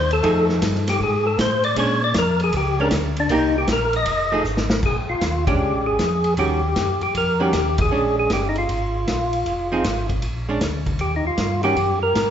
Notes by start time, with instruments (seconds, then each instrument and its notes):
Already playing: tonewheel organ D#2 C5
0.11 tonewheel organ A4, ride
0.23 tonewheel organ F2, hollow-body jazz guitar F3 A3 D#4 G#4, kick, ride
0.49 snare
0.62 tonewheel organ G2, kick, snare, hi-hat pedal, ride
0.75 snare
0.87 tonewheel organ G4, snare, ride
1.00 tonewheel organ G#2 G#4, kick
1.27 tonewheel organ A4
1.38 tonewheel organ A2 C5, kick, snare, hi-hat pedal, ride
1.64 tonewheel organ D5, ride
1.76 tonewheel organ A#2 C#5, hollow-body jazz guitar G#3 C#4 D4, kick, ride
2.04 tonewheel organ D5
2.14 tonewheel organ F2, kick, snare, hi-hat pedal, ride
2.18 tonewheel organ A#4
2.40 ride
2.44 tonewheel organ G#4
2.52 tonewheel organ C#2, kick, ride
2.57 tonewheel organ G4
2.80 hollow-body jazz guitar G#3 C#4 D4, tonewheel organ A#4
2.91 tonewheel organ D2, kick, snare, hi-hat pedal, ride
3.17 tonewheel organ D4, ride
3.29 tonewheel organ C2, hollow-body jazz guitar A#3 D#4 G4, kick, ride
3.34 tonewheel organ D#4
3.58 tonewheel organ G4
3.67 tonewheel organ A#1, kick, snare, hi-hat pedal, ride
3.72 tonewheel organ A#4
3.93 tonewheel organ D#5, ride
4.06 tonewheel organ F1, kick, ride
4.32 hollow-body jazz guitar F3 A3 D#4 G#4
4.44 tonewheel organ G#1, hi-hat pedal
4.57 snare
4.70 snare
4.83 tonewheel organ A#1 G#4, kick, crash
5.09 tonewheel organ A#1 F4
5.21 tonewheel organ D#2, kick, snare, hi-hat pedal, ride
5.47 hollow-body jazz guitar G#3 C#4 D4, tonewheel organ G4, kick, ride
5.59 tonewheel organ C#2
5.73 tonewheel organ A#1
5.86 tonewheel organ G#1 G#4
5.99 tonewheel organ F2, kick, snare, hi-hat pedal, ride
6.24 ride
6.37 tonewheel organ D#2 G4, hollow-body jazz guitar D#3 G3 C#4 F#4, kick, ride
6.76 tonewheel organ F#2, kick, snare, hi-hat pedal, ride
7.01 tonewheel organ F#2 G4, ride
7.15 tonewheel organ F2 A#4, kick, ride
7.40 hollow-body jazz guitar D#3 G3 C#4 F#4, tonewheel organ G4
7.53 tonewheel organ D#2, kick, snare, hi-hat pedal, ride
7.78 tonewheel organ G#4, kick, ride
7.91 tonewheel organ A#1, hollow-body jazz guitar G#3 C#4 D4
8.19 tonewheel organ G#4
8.30 tonewheel organ G1 G4, kick, snare, hi-hat pedal, ride
8.49 tonewheel organ D#4
8.55 tonewheel organ F4, ride
8.69 tonewheel organ G#1, kick, ride
9.07 tonewheel organ A#1, kick, snare, hi-hat pedal, ride
9.33 ride
9.45 tonewheel organ F1, kick, ride
9.72 hollow-body jazz guitar F3 C4 D#4 G#4
9.84 tonewheel organ G#1, kick, snare, hi-hat pedal, ride
10.09 kick, ride
10.22 tonewheel organ A#1, kick, ride
10.49 hollow-body jazz guitar G#3 C#4 D4
10.61 tonewheel organ D2, kick, snare, hi-hat pedal, ride
10.86 kick, ride
10.99 tonewheel organ D#2 G4, kick, ride
11.16 tonewheel organ D#4
11.24 tonewheel organ D#2 F4
11.37 tonewheel organ G2, kick, snare, hi-hat pedal, ride
11.63 hollow-body jazz guitar D#3 G3 C#4 F#4, tonewheel organ G4, ride
11.76 tonewheel organ F#2, kick, ride
12.03 tonewheel organ A#4
12.14 tonewheel organ G#2, kick, snare, hi-hat pedal, ride